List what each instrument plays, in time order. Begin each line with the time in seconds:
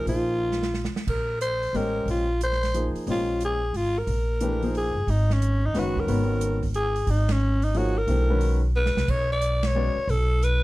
0.06 upright bass A#1, grand piano F3 A#3 D#4 G#4 C5, alto saxophone F4, open hi-hat
0.52 snare
0.63 snare
0.74 snare
0.85 snare
0.94 muted upright bass stroke, snare
1.07 upright bass A#1, alto saxophone A#4, kick, crash
1.41 alto saxophone C5, closed hi-hat
1.63 open hi-hat
1.73 upright bass A1, grand piano G#3 C#4 G4 C5 D#5, alto saxophone A#4, open hi-hat
2.06 upright bass A#1, open hi-hat
2.11 alto saxophone F4
2.41 alto saxophone C5, closed hi-hat
2.52 snare
2.63 snare, open hi-hat
2.74 grand piano F3 A#3 D#4 G#4 C5, closed hi-hat
2.94 muted upright bass stroke, open hi-hat
3.07 upright bass A#1, grand piano G#3 C#4 G4 C5 D#5, open hi-hat
3.11 alto saxophone F4
3.41 closed hi-hat
3.45 alto saxophone G#4
3.73 upright bass G#1, alto saxophone F4, open hi-hat
3.98 alto saxophone A#4
4.07 upright bass A#1, open hi-hat
4.40 grand piano E3 A3 D4 G4 B4, closed hi-hat
4.62 grand piano F3 A#3 D#4 G#4 C5, open hi-hat
4.75 alto saxophone G#4, open hi-hat
4.95 upright bass G1
5.07 upright bass G#1, alto saxophone D#4, open hi-hat
5.30 alto saxophone C#4, snare
5.42 closed hi-hat
5.66 alto saxophone D#4
5.73 upright bass F#1, grand piano D#3 G#3 C#4 F#4 B4, snare, open hi-hat
5.79 alto saxophone F#4
5.96 alto saxophone A#4, kick
6.07 upright bass G#1, grand piano D#3 G#3 B3 C#4 F#4, open hi-hat
6.41 closed hi-hat
6.63 kick, open hi-hat
6.74 alto saxophone G#4, closed hi-hat
6.96 open hi-hat
7.07 upright bass G#1, alto saxophone D#4, open hi-hat
7.29 alto saxophone C#4, snare, ride
7.62 alto saxophone D#4, open hi-hat
7.74 grand piano F3 A#3 D#4 G#4 C#5, alto saxophone F#4, open hi-hat
7.98 alto saxophone A#4
8.07 upright bass B1, grand piano E3 A3 D4 G4 C5, open hi-hat
8.30 grand piano D#3 G#3 C#4 F#4 B4
8.41 open hi-hat
8.76 alto saxophone B4
8.86 snare
8.95 upright bass C2, snare
9.08 upright bass B1, alto saxophone C#5, kick, crash
9.32 alto saxophone D5
9.41 closed hi-hat
9.63 alto saxophone C#5, snare, ride
9.75 grand piano G#3 C#4 F#4 B4 D5
9.96 muted upright bass stroke
10.07 upright bass B1, alto saxophone A4, open hi-hat
10.43 alto saxophone B4, closed hi-hat